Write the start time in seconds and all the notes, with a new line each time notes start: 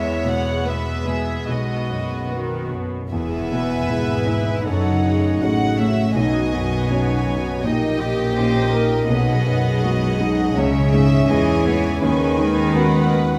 Already playing: E2 G#3 B3 G#4 B4 C#5 E5
0.24 B2 B3 F#5
0.64 B3 B4 E5
1.06 B2 G#4
1.47 B1 B2 F#4 D#5
1.89 F#2 B3
2.31 D#3 B3 F#4 B4
2.73 F#2 B2 F#4
3.11 E1 E2 B3 G#4 E5 G#5
3.38 B2
3.51 B2 B4
3.65 B3
3.90 G#1 G#2 B3 E4 G#4
4.15 G#4
4.27 B3 E4
4.41 D#4
4.66 F#1 F#2 D#4 A4 C#5 F#5
4.91 C#3
5.05 C#3 G#4
5.16 A3
5.41 A1 A2 A3 C#4 F#4 G#4 F#5
5.66 G#4
5.79 A3 C#4 E5
5.90 C#4
6.15 B1 B2 D#4 F#4 D#5 G#5
6.40 F#3
6.53 F#2 B3
6.65 C#4
6.90 F#3 C#4 D#4 C#5
7.15 F#4
7.27 F#3
7.39 D#4
7.63 A#1 A#2 D#4 G4 D#5 G5
7.88 A#3
8.01 A#2 G4
8.12 C#4
8.37 A#3 C#4 D#4 C5 D#5
8.62 A#4
8.74 A#3 A#4
8.85 D#4
9.09 B1 B2 B3 G#4 D#5 F#5
9.34 F#3
9.47 F#2 G#4
9.58 B3
9.83 G#3 D#4 F#4
10.08 G#4
10.20 G#3 D#4 G#4
10.32 F#4
10.57 C#2 C#3 C#4 G#4 C#5 E5
10.82 C#4
10.93 G#2 E5
11.06 G#3
11.29 E2 E3 G#3 C#4 E4 D#5 G#5
11.55 G#4
11.66 G#3 B3 C#5
11.79 E4
12.02 D#2 D#3 C#4 B4 G#5
12.27 B3
12.38 D#3 G#3
12.51 C#4
12.75 B3 C#4 F#4 B4 F#5
13.01 B4
13.13 B3
13.25 F#4